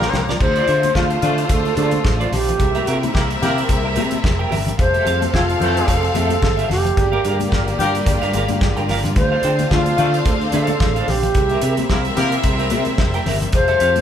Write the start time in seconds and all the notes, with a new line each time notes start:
Already playing: F3 A#3 D4 F4 G4 A#4 A#5
0.00 muted clean electric guitar stroke, snare
0.13 C2, muted clean electric guitar stroke, snare, low conga
0.29 F4 A#4 D5, snare, low conga
0.40 D2 C3 A3 D4 F4 C5, muted clean electric guitar stroke, kick, crash, cowbell
0.56 F4 C5 D5, closed hi-hat
0.68 D3 F4 C5 E5, closed hi-hat, cowbell
0.83 muted clean electric guitar stroke, closed hi-hat, high conga
0.95 D2 A3 D4 F4 A4, muted clean electric guitar stroke, kick, snare, cowbell, muted conga
1.10 muted clean electric guitar stroke, closed hi-hat
1.22 D3 A3 D4 F4 A4, closed hi-hat, high conga, low conga
1.38 muted clean electric guitar stroke, closed hi-hat
1.49 D2 A4, muted clean electric guitar stroke, kick, closed hi-hat, cowbell, muted conga
1.65 muted clean electric guitar stroke, closed hi-hat, muted conga
1.76 D3 F4 A4 C5 D5, closed hi-hat, cowbell, high conga
1.91 muted clean electric guitar stroke, closed hi-hat, high conga
2.05 A1, muted clean electric guitar stroke, kick, snare, cowbell
2.20 F4 C5 D5, closed hi-hat, muted conga
2.32 A#1 G4, muted clean electric guitar stroke, snare, open hi-hat, low conga
2.48 muted clean electric guitar stroke, closed hi-hat, low conga
2.59 C2 G3 A#3 C4 E4 A#4 E5, muted clean electric guitar stroke, kick, closed hi-hat, cowbell, muted conga
2.75 G4 A#4 E5, closed hi-hat, muted conga
2.86 C3 G4 A#4 E5, closed hi-hat, cowbell
3.03 muted clean electric guitar stroke, closed hi-hat, high conga
3.14 C2 A#3 E4 G4 A#4, muted clean electric guitar stroke, kick, snare, cowbell
3.29 muted clean electric guitar stroke, closed hi-hat
3.42 C3 A#3 E4 G4 A#4, closed hi-hat, high conga, low conga
3.57 muted clean electric guitar stroke, closed hi-hat
3.69 C2, muted clean electric guitar stroke, kick, closed hi-hat, cowbell
3.84 G4 A#4 E5
3.96 C3 G4 A#4 E5, closed hi-hat, cowbell, high conga
4.11 muted clean electric guitar stroke, closed hi-hat, high conga
4.24 F1, muted clean electric guitar stroke, kick, snare, cowbell
4.39 G4 A#4 G5, muted conga
4.51 G1 G4 A#4 E5, open hi-hat, low conga
4.67 muted clean electric guitar stroke, closed hi-hat, low conga
4.78 F1 C3 A3 C4 A4 C5 F5, muted clean electric guitar stroke, kick, closed hi-hat, cowbell
4.94 G4 A4 E5, closed hi-hat, muted conga
5.06 F2 G4 A4 F5, closed hi-hat, cowbell
5.22 muted clean electric guitar stroke, closed hi-hat, high conga
5.33 F1 A3 C4 E4 F4 A4, muted clean electric guitar stroke, kick, snare, cowbell, muted conga
5.49 muted clean electric guitar stroke, closed hi-hat, muted conga
5.60 F2 E3 A3 C4 A4, closed hi-hat, high conga, low conga
5.77 muted clean electric guitar stroke, closed hi-hat
5.88 F1 A4, muted clean electric guitar stroke, kick, closed hi-hat, cowbell, muted conga
6.03 muted clean electric guitar stroke, closed hi-hat, muted conga
6.14 F2 G4 A4 E5, closed hi-hat, cowbell, high conga
6.30 muted clean electric guitar stroke, closed hi-hat, high conga
6.42 G1, muted clean electric guitar stroke, kick, snare, cowbell, muted conga
6.57 G4 A4 E5, closed hi-hat, muted conga
6.69 F1 G4, muted clean electric guitar stroke, snare, open hi-hat, low conga
6.85 muted clean electric guitar stroke, closed hi-hat, low conga
6.97 G1 D3 G3 A#3 F4 G4 D5, muted clean electric guitar stroke, kick, closed hi-hat, cowbell, muted conga
7.12 G4 A#4 F5, muted conga
7.24 G2 G4 A#4 F5, closed hi-hat, cowbell
7.39 muted clean electric guitar stroke, closed hi-hat, high conga
7.52 G1 A#3 F4 G4 A#4, muted clean electric guitar stroke, kick, snare, cowbell
7.67 muted clean electric guitar stroke, closed hi-hat, muted conga
7.79 G2 A#3 F4 G4 A#4, closed hi-hat, high conga, low conga
7.95 muted clean electric guitar stroke, closed hi-hat
8.06 G1, muted clean electric guitar stroke, kick, closed hi-hat, cowbell, muted conga
8.22 G2 G4 A#4 F5, closed hi-hat, muted conga
8.33 G1 G4 A#4 F5, closed hi-hat, cowbell, high conga
8.48 G2, muted clean electric guitar stroke, closed hi-hat, high conga
8.61 G1, muted clean electric guitar stroke, kick, snare, cowbell, muted conga
8.77 G2 G4 A#4 G5, closed hi-hat, muted conga
8.89 G1 G4 A#4 F5, snare, open hi-hat, low conga
9.04 G2, muted clean electric guitar stroke, closed hi-hat, low conga
9.16 D2 A3 C4 D4 C5 F5, muted clean electric guitar stroke, kick, closed hi-hat, cowbell
9.32 A4 C5 F5
9.43 D3 A4 C5 G5, closed hi-hat, cowbell
9.59 muted clean electric guitar stroke, closed hi-hat, high conga
9.71 D2 A3 D4 F4 A4, kick, snare, cowbell, muted conga
9.86 muted clean electric guitar stroke, closed hi-hat, muted conga
9.97 D3 A3 D4 F4 A4, closed hi-hat, high conga, low conga
10.14 muted clean electric guitar stroke, closed hi-hat
10.26 D2 A4, muted clean electric guitar stroke, kick, closed hi-hat, cowbell
10.41 muted clean electric guitar stroke, closed hi-hat
10.52 D3 A4 C5 F5, closed hi-hat, cowbell, high conga
10.67 muted clean electric guitar stroke, closed hi-hat, high conga
10.80 A1, muted clean electric guitar stroke, kick, snare, cowbell, muted conga
10.96 A4 C5 F5, closed hi-hat
11.08 A#1 G4, muted clean electric guitar stroke, snare, open hi-hat, low conga
11.23 muted clean electric guitar stroke, closed hi-hat, low conga
11.35 C2 C3 G3 A#3 C4 E4 A#4 E5, muted clean electric guitar stroke, kick, closed hi-hat, cowbell, muted conga
11.49 G4 A#4 E5, closed hi-hat, muted conga
11.62 C3 G4 A#4 E5, closed hi-hat, cowbell
11.77 muted clean electric guitar stroke, closed hi-hat, high conga
11.90 C2 A#3 E4 G4 A#4, muted clean electric guitar stroke, kick, snare, cowbell, muted conga
12.04 muted clean electric guitar stroke, closed hi-hat, muted conga
12.17 C3 A#3 E4 G4 A#4, closed hi-hat, high conga, low conga
12.31 muted clean electric guitar stroke, closed hi-hat
12.44 C2, muted clean electric guitar stroke, kick, closed hi-hat, cowbell, muted conga
12.59 G4 A#4 E5, closed hi-hat, muted conga
12.70 C3 G4 A#4 E5, closed hi-hat, cowbell, high conga
12.85 muted clean electric guitar stroke, closed hi-hat, high conga
12.98 F1, muted clean electric guitar stroke, kick, snare, cowbell
13.14 G4 A#4 G5, closed hi-hat
13.26 G1 G4 A#4 E5, snare, open hi-hat, low conga
13.41 muted clean electric guitar stroke, closed hi-hat, low conga
13.53 F1 F3 A3 C4 F4 A4 C5 F5, muted clean electric guitar stroke, kick, closed hi-hat, cowbell, muted conga
13.68 G4 A4 E5, closed hi-hat
13.79 F2 G4 A4 F5, closed hi-hat, cowbell
13.96 closed hi-hat, high conga